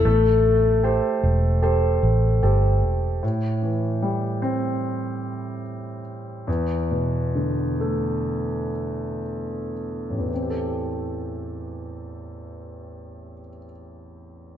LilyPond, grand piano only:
\new Staff \with { instrumentName = "Grand piano" } { \time 4/4 \key a \minor \tempo 4 = 71 a4 <g' a' c''>4 <g' a' c''>4 <g' a' c''>4 | a,8 e8 g8 c'2 r8 | e,8 b,8 d8 a2 r8 | <a,, e, e c' g' a'>1 | }